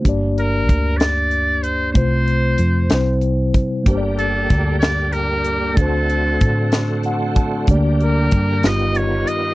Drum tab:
HH |xxxxxx|xxxxxx|xxxxxx|xxxxxx|
SD |---o--|---o--|---o--|---o--|
BD |o-o---|o----o|o-o---|o-o--o|

HH |xxxxxx|
SD |---o--|
BD |o-o---|